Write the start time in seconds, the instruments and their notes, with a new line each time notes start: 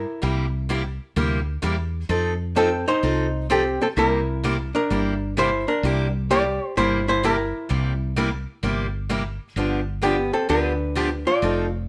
Already playing: hollow-body jazz guitar E4 A#4
0.22 fretless electric bass C2, steel-string acoustic guitar C3 G3 A#3 E4 G4
0.69 steel-string acoustic guitar C3 G3 A#3 E4 G4
1.16 fretless electric bass D2, steel-string acoustic guitar C3 G3 A#3 E4 G4
1.62 fretless electric bass E2, steel-string acoustic guitar C3 G3 A#3 E4 G4
2.09 fretless electric bass F2, steel-string acoustic guitar F3 C4 D#4 A4
2.56 steel-string acoustic guitar F3 C4 D#4 A4, hollow-body jazz guitar C4 A4
2.88 hollow-body jazz guitar D#4 C5
3.03 fretless electric bass C2, steel-string acoustic guitar F3 C4 D#4 A4
3.50 steel-string acoustic guitar F3 C4 D#4 A4, hollow-body jazz guitar C4 G4
3.82 hollow-body jazz guitar C4 A4
3.97 fretless electric bass C2, steel-string acoustic guitar C3 G3 A#3 E4 G4, hollow-body jazz guitar E4 A#4
4.44 steel-string acoustic guitar C3 G3 A#3 E4 G4
4.75 hollow-body jazz guitar D4 A#4
4.90 fretless electric bass G1, steel-string acoustic guitar C3 G3 A#3 E4 G4
5.37 steel-string acoustic guitar C3 G3 A#3 E4 G4, hollow-body jazz guitar E4 C5
5.68 hollow-body jazz guitar D4 A#4
5.83 fretless electric bass C2, steel-string acoustic guitar C3 G3 A#3 E4 G4
6.30 steel-string acoustic guitar C3 G3 A#3 E4 G4, hollow-body jazz guitar G4 D5
6.77 fretless electric bass G1, steel-string acoustic guitar C3 G3 A#3 E4 G4, hollow-body jazz guitar E4 C5
7.08 hollow-body jazz guitar E4 C5
7.23 steel-string acoustic guitar C3 G3 A#3 E4 G4, hollow-body jazz guitar E4 A#4
7.69 fretless electric bass C2, steel-string acoustic guitar C3 G3 A#3 E4 G4
8.16 steel-string acoustic guitar C3 G3 A#3 E4 G4
8.63 fretless electric bass G1, steel-string acoustic guitar C3 G3 A#3 E4 G4
9.09 steel-string acoustic guitar C3 G3 A#3 E4 G4
9.56 fretless electric bass G1, steel-string acoustic guitar D3 F3 B3 D4 G4
10.02 steel-string acoustic guitar D3 F3 B3 D4 G4, hollow-body jazz guitar B3 G4
10.33 hollow-body jazz guitar C4 A4
10.49 fretless electric bass D2, steel-string acoustic guitar D3 F3 B3 D4 G4, hollow-body jazz guitar D4 B4
10.95 steel-string acoustic guitar D3 F3 B3 D4 G4
11.27 hollow-body jazz guitar F4 D5
11.42 fretless electric bass F1, steel-string acoustic guitar F3 C4 D#4 A4